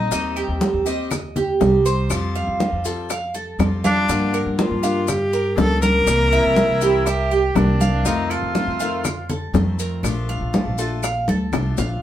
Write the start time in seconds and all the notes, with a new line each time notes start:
Already playing: C4 D#4 G#4 D#5
0.11 D#2 D#3 G3 C4 D#4 G4, high bongo, high conga, maracas
0.36 G4, high conga, claves, maracas
0.48 D#2
0.61 D#3 G3 C4 G4, high bongo, high conga, maracas
0.73 D#2
0.86 G3 C4 G4 D#5, high conga, maracas
1.10 muted steel-string acoustic guitar stroke, high bongo, high conga, low conga, claves, maracas
1.36 G4, high conga, low conga, maracas
1.60 C2 D#3 G3 C4 G4, high bongo, low bongo, high conga, maracas
1.86 C5, maracas
2.10 F2 F3 G3 C4 F4, high bongo, high conga, claves, maracas
2.35 F5, high bongo, high conga, maracas
2.47 F2
2.60 F3 G3 C4 F4, high bongo, high conga, maracas
2.72 F2
2.85 G3 C4 F4 A4, high bongo, maracas
3.10 F5, muted steel-string acoustic guitar stroke, high bongo, high conga, claves, maracas
3.34 A4, high conga, maracas
3.59 F2 F3 G3 C4 F4, high bongo, low bongo, high conga, claves, maracas
3.84 D4 F5, high bongo, high conga, maracas
4.08 G2 D3 F3 A#3 D4 F4 G4, high bongo, high conga, maracas
4.34 A#4, high conga, claves, maracas
4.46 G2
4.59 F3 A#3 D4 F4 G4, high bongo, high conga, maracas
4.71 G2
4.83 F3 A#3 D4 G4 F5, high conga, maracas
5.08 G4, muted steel-string acoustic guitar stroke, high bongo, high conga, low conga, claves, maracas
5.33 A#4, high conga, maracas
5.57 C#2 F3 A#3 D4 G4 A4, high bongo, low bongo, high conga, maracas
5.82 A#4, high conga, maracas
6.06 C2 C3 E3 A#3 C4 E4, high bongo, high conga, claves, maracas
6.32 E4 E5, high bongo, high conga, maracas
6.44 C2
6.56 E3 A#3 C4 E4, high bongo, high conga, maracas
6.68 C2
6.81 E3 A#3 C4 E4 G4, high bongo, maracas
7.06 G4 E5, muted steel-string acoustic guitar stroke, high bongo, high conga, claves, maracas
7.31 G4, high conga, maracas
7.55 C2 E3 A#3 C4 D4 E4, high bongo, low bongo, high conga, claves, maracas
7.80 F5, high bongo, high conga, maracas
8.05 F2 C3 D#3 A3 C4 D#4 F4, high bongo, high conga, maracas
8.30 F4 A4, high conga, claves, maracas
8.42 F2
8.55 D#3 A3 C4 F4, high bongo, high conga, maracas
8.66 F2
8.80 D#3 A3 C4 F4 F5, high conga, maracas
9.05 muted steel-string acoustic guitar stroke, high bongo, high conga, low conga, claves, maracas
9.29 A4, high conga, low conga, maracas
9.53 F2 D#3 A3 C4 F4, high bongo, low bongo, high conga, maracas
9.79 A#4, maracas
10.03 A#1 F3 A3 D4 F4, high bongo, high conga, claves, maracas
10.29 F5, high bongo, high conga, maracas
10.41 A#1
10.53 F3 A3 D4 F4, high bongo, high conga, maracas
10.65 A#1
10.78 A3 D4 F4 A4, high bongo, maracas
11.03 F5, muted steel-string acoustic guitar stroke, high bongo, high conga, claves, maracas
11.28 D2 A4, high conga, maracas
11.52 C2 F3 A3 D4 F4, high bongo, low bongo, low conga, claves, maracas
11.77 A#1 F5, high bongo, low conga, maracas